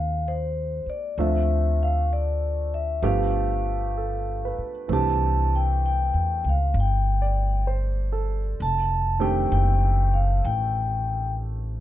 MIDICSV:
0, 0, Header, 1, 5, 480
1, 0, Start_track
1, 0, Tempo, 927357
1, 607, Time_signature, 4, 2, 24, 8
1, 3488, Tempo, 920245
1, 6129, End_track
2, 0, Start_track
2, 0, Title_t, "Vibraphone"
2, 0, Program_c, 0, 11
2, 0, Note_on_c, 0, 77, 80
2, 145, Note_on_c, 0, 72, 73
2, 154, Note_off_c, 0, 77, 0
2, 464, Note_off_c, 0, 72, 0
2, 464, Note_on_c, 0, 74, 68
2, 621, Note_off_c, 0, 74, 0
2, 624, Note_on_c, 0, 76, 76
2, 944, Note_off_c, 0, 76, 0
2, 946, Note_on_c, 0, 77, 73
2, 1086, Note_off_c, 0, 77, 0
2, 1101, Note_on_c, 0, 74, 74
2, 1419, Note_on_c, 0, 76, 65
2, 1421, Note_off_c, 0, 74, 0
2, 1562, Note_off_c, 0, 76, 0
2, 1579, Note_on_c, 0, 77, 68
2, 2355, Note_off_c, 0, 77, 0
2, 2552, Note_on_c, 0, 81, 87
2, 2871, Note_off_c, 0, 81, 0
2, 2876, Note_on_c, 0, 79, 70
2, 3026, Note_off_c, 0, 79, 0
2, 3032, Note_on_c, 0, 79, 78
2, 3350, Note_off_c, 0, 79, 0
2, 3361, Note_on_c, 0, 77, 63
2, 3496, Note_off_c, 0, 77, 0
2, 3521, Note_on_c, 0, 79, 69
2, 3967, Note_off_c, 0, 79, 0
2, 4471, Note_on_c, 0, 81, 87
2, 4780, Note_on_c, 0, 79, 74
2, 4789, Note_off_c, 0, 81, 0
2, 4925, Note_off_c, 0, 79, 0
2, 4939, Note_on_c, 0, 79, 78
2, 5262, Note_on_c, 0, 77, 63
2, 5264, Note_off_c, 0, 79, 0
2, 5422, Note_off_c, 0, 77, 0
2, 5425, Note_on_c, 0, 79, 81
2, 5876, Note_off_c, 0, 79, 0
2, 6129, End_track
3, 0, Start_track
3, 0, Title_t, "Grand piano"
3, 0, Program_c, 1, 0
3, 0, Control_c, 1, 64, 127
3, 0, Note_on_c, 1, 56, 53
3, 0, Note_on_c, 1, 58, 46
3, 0, Note_on_c, 1, 60, 42
3, 0, Note_on_c, 1, 63, 48
3, 0, Note_on_c, 1, 67, 54
3, 607, Note_off_c, 1, 56, 0
3, 608, Note_off_c, 1, 60, 0
3, 610, Note_off_c, 1, 58, 0
3, 610, Note_off_c, 1, 63, 0
3, 611, Note_off_c, 1, 67, 0
3, 613, Control_c, 1, 64, 0
3, 614, Note_on_c, 1, 57, 40
3, 616, Note_on_c, 1, 53, 42
3, 616, Note_on_c, 1, 60, 36
3, 620, Note_on_c, 1, 62, 40
3, 620, Note_on_c, 1, 65, 44
3, 690, Control_c, 1, 64, 127
3, 1558, Note_off_c, 1, 53, 0
3, 1562, Note_off_c, 1, 57, 0
3, 1565, Note_off_c, 1, 62, 0
3, 1566, Note_on_c, 1, 53, 45
3, 1569, Note_on_c, 1, 57, 46
3, 1570, Note_off_c, 1, 60, 0
3, 1571, Note_on_c, 1, 59, 47
3, 1571, Note_on_c, 1, 67, 55
3, 1572, Note_off_c, 1, 65, 0
3, 1572, Control_c, 1, 64, 0
3, 1573, Note_on_c, 1, 62, 46
3, 1659, Control_c, 1, 64, 127
3, 2057, Note_on_c, 1, 69, 37
3, 2304, Note_on_c, 1, 71, 38
3, 2434, Note_off_c, 1, 69, 0
3, 2522, Note_off_c, 1, 57, 0
3, 2526, Note_on_c, 1, 52, 47
3, 2530, Note_on_c, 1, 57, 42
3, 2531, Note_off_c, 1, 53, 0
3, 2533, Note_off_c, 1, 59, 0
3, 2533, Note_off_c, 1, 67, 0
3, 2534, Note_off_c, 1, 62, 0
3, 2536, Note_on_c, 1, 60, 43
3, 2537, Control_c, 1, 64, 0
3, 2544, Note_on_c, 1, 62, 44
3, 2551, Note_on_c, 1, 67, 50
3, 2618, Control_c, 1, 64, 127
3, 2637, Note_off_c, 1, 71, 0
3, 3737, Note_on_c, 1, 74, 44
3, 3975, Note_on_c, 1, 72, 40
3, 4074, Note_off_c, 1, 74, 0
3, 4211, Note_on_c, 1, 69, 43
3, 4352, Note_off_c, 1, 72, 0
3, 4449, Note_off_c, 1, 52, 0
3, 4451, Note_off_c, 1, 57, 0
3, 4454, Note_off_c, 1, 60, 0
3, 4458, Note_off_c, 1, 62, 0
3, 4458, Control_c, 1, 64, 0
3, 4462, Note_off_c, 1, 67, 0
3, 4542, Control_c, 1, 64, 127
3, 4549, Note_off_c, 1, 69, 0
3, 4768, Note_on_c, 1, 51, 43
3, 4771, Note_on_c, 1, 57, 48
3, 4772, Note_on_c, 1, 60, 46
3, 4774, Note_on_c, 1, 62, 41
3, 4777, Note_on_c, 1, 67, 54
3, 6129, Note_off_c, 1, 51, 0
3, 6129, Note_off_c, 1, 57, 0
3, 6129, Note_off_c, 1, 60, 0
3, 6129, Note_off_c, 1, 62, 0
3, 6129, Note_off_c, 1, 67, 0
3, 6129, End_track
4, 0, Start_track
4, 0, Title_t, "Upright bass"
4, 0, Program_c, 2, 32
4, 0, Note_on_c, 2, 39, 72
4, 425, Note_off_c, 2, 39, 0
4, 609, Note_on_c, 2, 38, 71
4, 1545, Note_off_c, 2, 38, 0
4, 1565, Note_on_c, 2, 31, 73
4, 2348, Note_off_c, 2, 31, 0
4, 2530, Note_on_c, 2, 36, 64
4, 3150, Note_off_c, 2, 36, 0
4, 3177, Note_on_c, 2, 40, 49
4, 3323, Note_off_c, 2, 40, 0
4, 3335, Note_on_c, 2, 37, 59
4, 3482, Note_off_c, 2, 37, 0
4, 3489, Note_on_c, 2, 31, 69
4, 4429, Note_off_c, 2, 31, 0
4, 4459, Note_on_c, 2, 29, 70
4, 4914, Note_off_c, 2, 29, 0
4, 4936, Note_on_c, 2, 30, 71
4, 5393, Note_off_c, 2, 30, 0
4, 5420, Note_on_c, 2, 33, 72
4, 6129, Note_off_c, 2, 33, 0
4, 6129, End_track
5, 0, Start_track
5, 0, Title_t, "Muted upright bass strokes"
5, 446, Note_on_c, 9, 29, 32
5, 497, Note_off_c, 9, 29, 0
5, 2370, Note_on_c, 9, 29, 27
5, 2421, Note_off_c, 9, 29, 0
5, 6129, End_track
0, 0, End_of_file